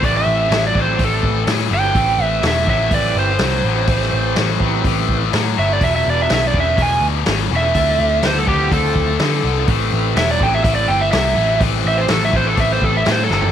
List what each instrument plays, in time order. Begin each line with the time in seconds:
0.01 picked electric bass A1, distorted electric guitar A2 E3, tonewheel organ C4 E4 G4 B4, electric slide guitar D5, kick, open hi-hat
0.17 electric slide guitar E5
0.26 picked electric bass A1
0.49 picked electric bass A1, distorted electric guitar A2 F#3, snare, open hi-hat
0.67 electric slide guitar D5
0.74 picked electric bass A1, distorted electric guitar A2 F#3, tonewheel organ C4 E4 G4 D5, kick
0.81 electric slide guitar C5
0.96 picked electric bass A1, distorted electric guitar A2 E3, kick, open hi-hat
1.04 electric slide guitar A4
1.23 picked electric bass A1, kick
1.47 picked electric bass A2, distorted electric guitar A2 F#3, snare, open hi-hat
1.70 picked electric bass G1, distorted electric guitar A2 F#3
1.74 electric slide guitar G5
1.80 tonewheel organ C4 E4 G4 B4
1.92 picked electric bass A1, distorted electric guitar A2 E3, tonewheel organ C4 E4 G4 B4, kick, open hi-hat
2.18 picked electric bass A1
2.23 electric slide guitar E5
2.42 picked electric bass E1, distorted electric guitar A2 F#3, snare, open hi-hat
2.48 electric slide guitar E5
2.67 picked electric bass A1, distorted electric guitar A2 F#3, tonewheel organ C4 E4 G4 B4, electric slide guitar E5, kick
2.90 picked electric bass A1, distorted electric guitar A2 E3, kick, open hi-hat
2.94 electric slide guitar D5
3.15 picked electric bass G1
3.19 electric slide guitar C5
3.39 picked electric bass C2, distorted electric guitar A2 F#3, snare, open hi-hat
3.64 picked electric bass A1, distorted electric guitar A2 F#3
3.74 tonewheel organ C4 E4 G4 B4
3.83 tonewheel organ C4 E4 G4 C5
3.87 picked electric bass A1, distorted electric guitar A2 E3, kick, open hi-hat
4.01 snare
4.13 picked electric bass A1
4.35 picked electric bass A1, distorted electric guitar A2 F#3, snare, open hi-hat
4.58 picked electric bass A1, distorted electric guitar A2 F#3, tonewheel organ C4 E4 G4 B4, kick
4.84 picked electric bass A1, distorted electric guitar A2 E3, kick, open hi-hat
5.08 picked electric bass A1, kick
5.31 distorted electric guitar A2 F#3, picked electric bass A2, snare, open hi-hat
5.55 picked electric bass G1, distorted electric guitar A2 F#3
5.59 electric slide guitar E5
5.66 tonewheel organ C4 E4 G4 B4
5.73 electric slide guitar D5
5.79 picked electric bass E1, distorted electric guitar E2 B2, tonewheel organ D4 F4 G#4 B4, kick, open hi-hat
5.83 electric slide guitar E5
5.96 electric slide guitar E5
6.06 picked electric bass E1, electric slide guitar D5
6.22 electric slide guitar E5
6.29 picked electric bass B1, distorted electric guitar E2 C#3, snare, open hi-hat
6.34 electric slide guitar E5
6.47 electric slide guitar D5
6.53 picked electric bass E1, distorted electric guitar E2 C#3, tonewheel organ D4 F4 G#4, kick
6.57 tonewheel organ B4, electric slide guitar E5
6.77 picked electric bass E1, distorted electric guitar E2 B2, kick, open hi-hat
6.82 electric slide guitar G#5
7.01 picked electric bass D2
7.26 picked electric bass G#1, distorted electric guitar E2 C#3, snare, open hi-hat
7.50 picked electric bass E1, distorted electric guitar E2 C#3
7.57 tonewheel organ D4, electric slide guitar E5
7.62 tonewheel organ F4 G#4 B4
7.74 picked electric bass D2, distorted electric guitar D3 A3, tonewheel organ C4 E4 F4 A4, kick, open hi-hat
7.99 picked electric bass D2
8.22 picked electric bass D2, distorted electric guitar D3 B3, snare, open hi-hat
8.27 electric slide guitar C5
8.39 electric slide guitar A4
8.47 picked electric bass D2, distorted electric guitar D3 B3, tonewheel organ C4 E4 F4 C5, electric slide guitar G4, kick
8.71 picked electric bass D2, distorted electric guitar D3 A3, electric slide guitar A4, kick, open hi-hat
8.96 picked electric bass D2, kick
9.19 picked electric bass D3, distorted electric guitar D3 B3, snare, open hi-hat
9.44 picked electric bass C2, distorted electric guitar D3 B3
9.56 tonewheel organ C4 E4 F4 A4
9.65 picked electric bass A1, distorted electric guitar A2 E3, tonewheel organ C4 E4 G4 B4, kick, open hi-hat
9.92 picked electric bass A1
10.15 picked electric bass E1, distorted electric guitar A2 F#3, electric slide guitar E5, snare, open hi-hat
10.31 electric slide guitar D5
10.40 picked electric bass A1, distorted electric guitar A2 F#3, tonewheel organ C4 E4 G4 A4, electric slide guitar G5, kick
10.54 electric slide guitar E5
10.63 picked electric bass A1, distorted electric guitar A2 E3, electric slide guitar E5, kick, open hi-hat
10.75 electric slide guitar D5
10.88 picked electric bass G1, electric slide guitar G5
11.01 electric slide guitar E5
11.11 picked electric bass C2, distorted electric guitar A2 F#3, electric slide guitar E5, snare, open hi-hat
11.35 picked electric bass A1, distorted electric guitar A2 F#3
11.44 tonewheel organ C4 E4 G4 B4
11.57 picked electric bass A1, distorted electric guitar A2 E3, tonewheel organ C4 E4 G4 C5, kick, open hi-hat
11.85 picked electric bass A1, electric slide guitar E5
11.98 electric slide guitar C5
12.08 picked electric bass A1, distorted electric guitar A2 F#3, electric slide guitar A4, snare, open hi-hat
12.25 electric slide guitar E5
12.31 picked electric bass A1, distorted electric guitar A2 F#3, tonewheel organ C4 E4 G4, kick
12.35 tonewheel organ B4, electric slide guitar C5
12.47 electric slide guitar A4
12.54 picked electric bass A1, distorted electric guitar A2 E3, kick, open hi-hat
12.60 electric slide guitar E5
12.72 electric slide guitar C5
12.81 picked electric bass A1, electric slide guitar A4, kick
12.97 electric slide guitar E5
13.04 distorted electric guitar A2 F#3, picked electric bass A2, snare, open hi-hat
13.11 electric slide guitar C5
13.24 electric slide guitar A4
13.29 picked electric bass G1, distorted electric guitar A2 F#3, snare
13.34 electric slide guitar A4
13.40 tonewheel organ C4 E4 G4 D5, floor tom